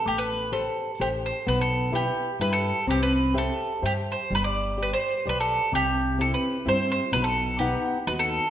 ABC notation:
X:1
M:3/4
L:1/16
Q:1/4=128
K:Clyd
V:1 name="Mandolin"
G B3 A4 G2 c2 | B A3 G4 B A3 | G B3 A4 G2 c2 | B d3 B c3 B A3 |
G4 A B3 c2 c2 | B A3 G4 B A3 |]
V:2 name="Nylon-string guitar"
A,4 [GAc]4 [GAc]4 | B,4 [EGB]4 [EGB]4 | C4 [Gce]4 [Gce]4 | G,4 [Gd]4 [GBd]4 |
C,4 [CEG]4 [CEG]4 | B,,4 [B,^Df]4 [B,DF]4 |]
V:3 name="Upright bass" clef=bass
A,,,8 A,,,4 | B,,,8 G,,4 | C,,8 G,,4 | G,,,8 B,,,4 |
C,,8 G,,4 | B,,,8 ^D,,4 |]